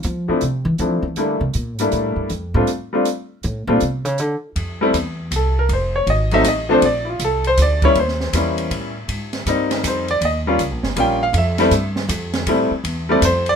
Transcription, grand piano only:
0.28 F3 A3 C4 D4 E4
0.80 F3 A3 C4 D4 E4
1.17 G3 A3 A#3 D4 E4
1.80 G3 A3 A#3 D4 E4
2.55 G3 A3 C4 D4 F4
2.93 G3 A3 C4 D4 F4
3.68 G3 A3 C4 D4 F4
4.81 G3 A3 C4 E4
5.36 A4
5.59 A#4
5.73 C5
5.96 C#5
6.10 D#5
6.32 F#3 A3 C4 D#4 E5
6.48 D#5
6.69 F3 A3 C4 D4 C5
6.86 D5
7.05 E4
7.09 F4
7.24 A4
7.47 C5
7.62 D5
7.84 G3 A#3 C#4 E4 C#5
8.00 C5
8.34 G3 A#3 C#4 E4
9.47 G3 A#3 C4 D#4
9.88 C5
10.11 D5
10.25 D#5
10.47 G3 A#3 C#4 F4
10.97 G3 A#3 C#4 F4 G5
11.23 F5
11.38 E5
11.59 G3 A3 C4 E4
12.48 G3 A3 C4 E4
13.09 G3 A3 C4 E4 D5
13.25 C5
13.49 D5

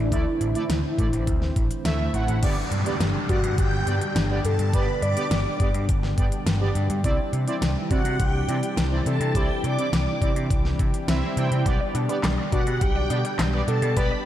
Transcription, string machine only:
3.29 F#5
3.58 G5
4.45 A5
4.74 B5
5.02 D6
7.91 F#5
8.20 G5
9.07 A5
9.35 G5
9.64 D6
12.52 F#5
12.81 G5
13.68 A5
13.97 B5

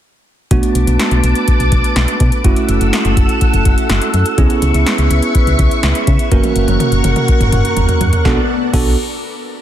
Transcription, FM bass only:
0.51 B1
0.75 B1
0.87 B1
1.11 B1
1.24 B1
1.60 B1
1.72 B1
1.96 B1
2.20 B2
2.45 F#1
2.69 F#1
2.81 F#1
3.05 F#1
3.17 F#1
3.53 F#1
3.66 F#1
3.90 F#1
4.14 F#2
4.38 C#2
4.62 C#2
4.74 C#2
4.99 C#2
5.11 C#2
5.47 C#2
5.59 C#2
5.83 C#2
6.08 C#3
6.32 F#1
6.56 F#1
6.68 F#1
6.92 F#1
7.04 F#1
7.40 F#1
7.53 F#1
7.77 F#1
8.01 F#2
8.25 B1
8.74 B1

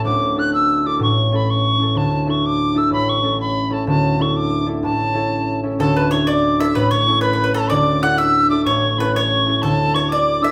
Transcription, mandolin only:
5.80 A4
5.96 B4
6.11 C#5
6.27 D5
6.60 E5
6.75 B4
6.91 C#5
7.21 B4
7.33 B4
7.44 B4
7.54 A4
7.70 D5
8.03 F#5
8.18 E5
8.66 C#5
9.00 B4
9.16 C#5
9.63 A4
9.96 C#5
10.12 D5
10.44 E5

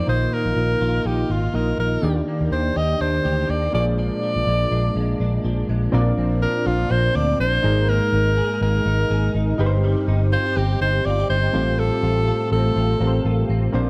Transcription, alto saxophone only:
0.09 C5
0.33 A#4
1.06 G4
1.31 F4
1.55 A#4
1.80 A#4
2.52 C5
2.77 D#5
3.02 C5
3.50 D5
3.75 D5
3.99 D5
6.42 A#4
6.67 F4
6.91 C5
7.16 D5
7.40 C5
7.89 A#4
8.62 A#4
10.33 C5
10.57 G4
10.81 C5
11.06 D5
11.30 C5
11.79 A4
12.52 A4

